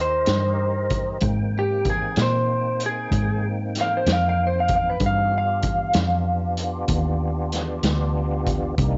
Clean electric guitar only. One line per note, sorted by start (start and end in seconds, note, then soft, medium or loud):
0.01 1.22 C5 medium
1.59 1.87 G4 loud
1.90 2.19 G#4 medium
2.22 2.81 C5 medium
2.86 3.45 G#4 medium
3.81 3.93 F5 medium
3.97 4.09 C5 medium
4.13 4.25 F5 medium
4.29 4.41 F5 medium
4.47 4.58 C5 medium
4.60 4.72 F5 medium
4.76 4.88 F5 medium
4.90 5.03 B4 medium
5.06 5.34 F5 medium
5.38 7.20 F5 medium